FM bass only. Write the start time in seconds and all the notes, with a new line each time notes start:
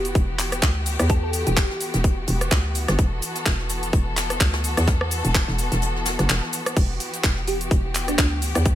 Already playing: E1
0.15 E1
0.62 D2
1.00 E2
1.47 E1
1.94 E1
2.28 E1
2.51 D2
2.88 G1
2.99 E1
3.46 E1
3.93 E1
4.40 D2
4.77 E2
5.25 E1
5.48 E1
5.72 E1
6.19 F#1
6.29 E1
6.77 E1
7.24 E1
7.71 E1
8.18 D2
8.55 E2